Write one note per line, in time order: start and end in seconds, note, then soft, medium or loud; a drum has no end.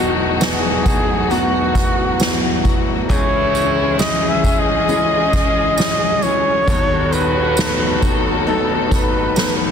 0.00 3.06 E1 medium
0.00 3.06 E2 medium
0.00 2.61 D#3 medium
0.00 0.40 E3 medium
0.00 0.41 E3 soft
0.00 0.40 F#3 soft
0.00 3.06 F#3 medium
0.00 3.06 A3 medium
0.00 0.40 B3 medium
0.00 0.41 B3 soft
0.00 2.61 D#4 medium
0.00 0.15 F#4 medium
0.00 0.42 F#4 medium
0.00 3.06 F#4 medium
0.40 0.85 E3 medium
0.40 1.28 E3 medium
0.40 1.27 F#3 soft
0.40 1.28 B3 soft
0.40 0.86 B3 medium
0.40 0.84 F#4 medium
0.40 1.33 G#4 medium
0.40 snare loud
0.40 ride medium
0.40 tambourine medium
0.85 1.29 B3 soft
0.85 1.30 F#4 soft
0.85 kick medium
0.85 ride medium
0.85 tambourine soft
1.30 2.19 E3 medium
1.30 2.18 E3 medium
1.30 2.17 F#3 soft
1.30 2.17 B3 soft
1.30 2.20 B3 medium
1.30 2.65 F#4 medium
1.30 2.21 F#4 medium
1.30 ride medium
1.30 tambourine soft
1.75 kick medium
1.75 snare soft
1.75 ride soft
1.75 tambourine soft
2.19 2.65 E3 medium
2.19 3.07 E3 medium
2.19 3.07 F#3 soft
2.19 3.07 B3 soft
2.19 2.65 B3 medium
2.19 2.63 F#4 medium
2.19 snare loud
2.19 ride medium
2.19 tambourine medium
2.42 ride soft
2.64 3.10 B3 soft
2.64 3.09 E4 medium
2.64 3.09 F#4 medium
2.64 kick medium
2.64 ride medium
2.64 tambourine soft
2.87 ride soft
3.09 6.64 C#2 medium
3.09 3.99 C#3 medium
3.09 4.41 E3 medium
3.09 6.64 E3 medium
3.09 3.97 E3 medium
3.09 6.64 C#4 medium
3.09 3.98 C#4 medium
3.09 4.41 E4 loud
3.09 3.99 E4 medium
3.09 6.64 G#4 medium
3.09 4.00 G#4 medium
3.09 3.96 C#5 loud
3.09 kick medium
3.09 tambourine soft
3.55 ride medium
3.55 tambourine soft
3.98 4.43 E3 medium
3.98 4.86 G#3 soft
3.98 4.86 C#4 soft
3.98 4.44 C#4 medium
3.98 4.86 E4 medium
3.98 4.44 E4 medium
3.98 4.42 G#4 medium
3.98 4.30 D#5 medium
3.98 snare loud
3.98 ride medium
3.98 tambourine medium
4.29 4.61 E5 loud
4.43 4.88 C#4 soft
4.43 4.88 E4 soft
4.43 4.88 G#4 medium
4.43 kick medium
4.43 ride medium
4.43 tambourine soft
4.59 6.24 D#5 loud
4.88 5.78 C#3 medium
4.88 5.76 E3 medium
4.88 5.75 G#3 medium
4.88 6.20 G#3 medium
4.88 5.76 C#4 soft
4.88 5.77 C#4 medium
4.88 5.76 E4 medium
4.88 5.78 E4 medium
4.88 6.20 G#4 medium
4.88 5.79 G#4 medium
4.88 ride medium
4.88 tambourine soft
5.33 kick medium
5.33 snare soft
5.33 tambourine soft
5.77 6.22 E3 medium
5.77 6.65 G#3 soft
5.77 6.65 C#4 soft
5.77 6.23 C#4 medium
5.77 6.65 E4 soft
5.77 6.23 E4 medium
5.77 6.21 G#4 medium
5.77 snare loud
5.77 ride medium
5.77 tambourine medium
6.22 6.68 C#4 soft
6.22 6.68 E4 soft
6.22 6.68 G#4 soft
6.22 7.14 C#5 loud
6.22 ride medium
6.22 tambourine soft
6.45 ride soft
6.67 9.71 D#1 medium
6.67 9.71 D#2 medium
6.67 9.71 D#3 medium
6.67 7.57 D#3 medium
6.67 9.71 F#3 medium
6.67 7.57 F#3 medium
6.67 9.71 B3 medium
6.67 7.58 B3 medium
6.67 7.58 D#4 medium
6.67 9.71 F#4 medium
6.67 9.71 A4 medium
6.67 7.58 A4 medium
6.67 kick loud
6.67 ride medium
6.67 tambourine soft
7.12 8.20 B4 medium
7.12 ride medium
7.12 tambourine soft
7.57 8.02 F#3 medium
7.57 8.44 A3 medium
7.57 8.03 B3 medium
7.57 8.45 B3 soft
7.57 8.45 D#4 medium
7.57 8.02 D#4 medium
7.57 8.00 A4 medium
7.57 snare loud
7.57 ride medium
7.57 tambourine medium
8.02 8.46 B3 soft
8.02 8.47 D#4 soft
8.02 8.47 A4 soft
8.02 kick medium
8.02 ride medium
8.02 tambourine soft
8.47 9.36 D#3 medium
8.47 9.35 F#3 medium
8.47 9.34 A3 soft
8.47 9.34 B3 soft
8.47 9.36 B3 medium
8.47 9.34 D#4 medium
8.47 9.36 D#4 medium
8.47 8.94 A4 medium
8.47 9.37 A4 medium
8.47 ride medium
8.91 9.71 B4 medium
8.91 kick medium
8.91 snare soft
8.91 tambourine soft
9.35 9.71 F#3 medium
9.35 9.71 A3 soft
9.35 9.71 B3 soft
9.35 9.71 B3 medium
9.35 9.71 D#4 soft
9.35 9.71 D#4 medium
9.35 9.71 A4 medium
9.35 snare loud
9.35 ride medium
9.35 tambourine medium